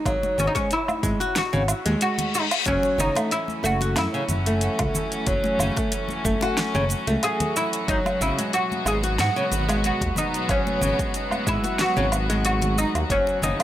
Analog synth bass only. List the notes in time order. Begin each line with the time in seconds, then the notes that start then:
0.05 G#1
0.38 G#1
1.03 G#1
1.53 G#1
1.86 D#2
2.66 F#1
2.98 F#1
3.64 F#1
3.96 F#2
4.29 F#1
4.79 C#2
5.27 F#1
5.59 F#1
6.25 F#1
6.75 F#1
7.07 C#2
7.88 G#1
8.20 G#1
8.86 G#1
9.19 G#2
9.52 G#1
10.01 D#2
10.49 G#1
10.82 G#1
11.47 G#1
11.97 G#1
12.12 G#1
12.95 D#2
13.10 F#1
13.43 F#1